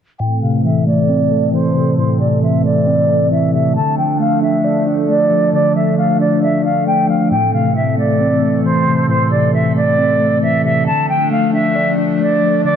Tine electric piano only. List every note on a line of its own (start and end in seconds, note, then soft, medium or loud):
0.20 1.31 A2 medium
0.43 1.54 C3 medium
0.65 1.52 E3 medium
0.87 1.30 A3 medium
1.09 2.20 C4 medium
1.32 2.43 A3 medium
1.53 2.41 E3 medium
1.75 2.19 C3 medium
1.98 3.09 A2 medium
2.20 3.31 C3 medium
2.42 3.30 E3 medium
2.64 3.08 A3 medium
2.87 3.76 C4 loud
3.09 3.76 A3 medium
3.32 3.76 E3 medium
3.54 3.76 C3 medium
3.76 4.87 D3 medium
3.98 5.09 F3 medium
4.20 5.08 A3 medium
4.42 4.86 D4 medium
4.64 5.76 D5 loud
4.87 5.98 D4 medium
5.09 5.97 A3 medium
5.31 5.74 F3 medium
5.53 6.65 D3 medium
5.76 6.87 F3 medium
5.98 6.86 A3 medium
6.20 6.63 D4 medium
6.42 7.31 D5 medium
6.65 7.31 D4 medium
6.87 7.31 A3 medium
7.09 7.31 F3 medium
7.31 8.42 A2 medium
7.54 8.65 C3 medium
7.76 8.63 E3 medium
7.98 8.41 A3 medium
8.20 9.31 C4 loud
8.42 9.54 A3 medium
8.64 9.52 E3 medium
8.86 9.30 C3 medium
9.09 10.20 A2 medium
9.31 10.42 C3 medium
9.53 10.42 E3 medium
9.75 10.19 A3 medium
9.98 10.87 C4 loud
10.20 10.87 A3 medium
10.43 10.87 E3 medium
10.65 10.87 C3 medium
10.87 11.98 D3 medium
11.09 12.20 F3 medium
11.31 12.19 A3 medium
11.53 11.97 D4 medium
11.75 12.76 D5 loud
11.98 12.76 D4 medium
12.20 12.76 A3 medium
12.42 12.76 F3 medium
12.65 12.76 D3 medium